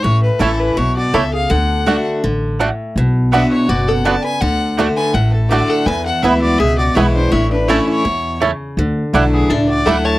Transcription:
0.03 A1 A2 C#5
0.23 B4
0.39 A1 E3 A3 C#4 E4 A4 C#5 A5
0.59 B4
0.77 B1 B2 E4 C#5
0.97 F#4 D5
1.13 C#2 C#3 A3 C#4 E4 A4 C#5 E5 A5
1.33 G#4 F5
1.50 D2 D3 A4 F#5
1.86 D3 A3 D4 F#4 D5 F#5
2.24 A1 D3
2.59 A2 A3 D4 F#4 D5 F#5
2.96 B1 B2
3.32 D3 B3 D4 F#4 B4 D5 E5 F#5
3.51 E4 C#5
3.69 F#1 B2 F#4 D5
3.88 A4 F#5
4.05 C#3 B3 D4 F#4 D5 F#5 A5
4.24 B4 G#5
4.41 D2 D3 A4 F#5
4.77 D3 A3 D4 F#4 D5 F#5
4.96 B4 G#5
5.13 A1 A2 A4 F#5
5.33 A4, muted resonator guitar played with a steel bar stroke
5.49 D3 A3 D4 F#4 D5 F#5
5.68 A4 F#5
5.86 E2 B4 G#5
6.06 A4 F#5
6.22 D2 E3 G#3 B3 E4 G#4 B4 E5 G#5
6.42 F#4 D5
6.58 C#2 B2 G#4 E5
6.78 F#4 D5
6.95 B1 E3 G#3 B3 E4 B4 C#5 G#5
7.14 D4 C5
7.31 A1 A2 E4 C#5
7.51 D4 B4
7.68 E3 A3 C#4 E4 C#5 A5
7.87 E4 C#5
8.05 E2 B2
8.40 C#3 A3 C#4 E4 C#5 A5
8.77 D2 D3
9.13 B1 F#3 A3 D4 E4 D5 F#5
9.33 B3 G#4
9.50 C#2 A2 D4 A4
9.69 F#4 D5
9.86 D2 F#3 A3 D4 E4 A4 D5 F#5
10.05 C#5 A5

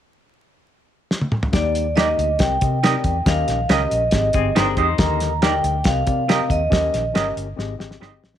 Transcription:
1.11 snare
1.21 high tom
1.32 mid tom
1.43 floor tom
1.52 D#2 D#3 A#3 D#4 G4 D5, kick, snare, closed hi-hat
1.75 closed hi-hat
1.96 A#3 D#4 G4 A#4 D5 D#5, snare, closed hi-hat
2.19 D2, closed hi-hat
2.39 C2 C3 C4 G4 A#4 D#5 G5, kick, snare, closed hi-hat
2.61 C3 C4 G4 A#4 D#5, kick, closed hi-hat
2.83 C4 D#4 G4 A#4 D5 D#5, snare, closed hi-hat
3.04 E2, kick, closed hi-hat
3.26 D#2 D#3 C#4 G4 A#4 D#5 F5, kick, snare, closed hi-hat
3.48 A#1, snare, closed hi-hat
3.69 C#2 C#4 G4 A#4 D#5, snare, closed hi-hat
3.91 A#1, closed hi-hat
4.11 G#1 G#2 C4 G4 G#4 D#5, kick, snare, closed hi-hat
4.33 G1 C4 G4 G#4 D#5, kick, closed hi-hat
4.55 G1 C4 D4 D#4 G4 G#4 A#4 B4 C5 D#5, snare, closed hi-hat
4.62 C5
4.77 E2 D#4 G4 C5 D#5, kick, closed hi-hat
4.98 D#2 D3 D#3 G4 A#4 D#5 A#5, kick, snare, closed hi-hat
5.20 snare, closed hi-hat
5.41 D3 A#3 D#4 G4 A#4 D5 D#5 G5, snare, closed hi-hat
5.64 D2, closed hi-hat
5.84 C2 C3 C4 G4 A#4 D#5 F5, kick, snare, closed hi-hat
6.06 C3 C4 G4 A#4 D5, kick, closed hi-hat
6.28 C4 G4 A#4 D#5, snare, closed hi-hat
6.50 D#2 D#5, kick, closed hi-hat
6.70 D#2 D#3 C#4 G4 A#4 D#5, kick, snare, closed hi-hat
6.94 A#1, snare, closed hi-hat
7.14 G1 C#4 G4 A#4 D#5, snare, closed hi-hat
7.37 G1, closed hi-hat
7.57 G#1 G#2 C4 G4 G#4 D#5, snare
7.78 G#1 C4 G4 G#4 D#5, snare
7.91 snare
8.00 G1 C4 D#4 G4 G#4 C5 D5 D#5, snare
8.07 D#5
8.23 A1, snare
8.34 snare

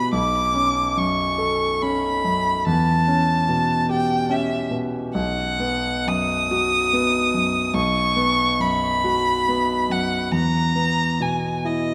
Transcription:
Already playing: B2 B3 G4 B5
0.12 B1 D6
0.54 C#4
0.97 F#2 C#6
1.38 A4
1.82 C#4 B5
2.25 F#2
2.66 E2 A5
3.08 C#4
3.49 B2
3.89 G4 G5
4.29 C#4 E5
4.71 B2
5.14 B1 F#5
5.60 B3
6.07 F#2 D#6
6.51 F#4
6.93 B3
7.34 F#2
7.73 B1 C#6
8.16 B3
8.60 F#2 B5
9.04 F#4
9.48 B3
9.89 F#2 F#5
10.32 E2 A#5
10.75 B3
11.20 B2 G#5
11.65 E4 D#5

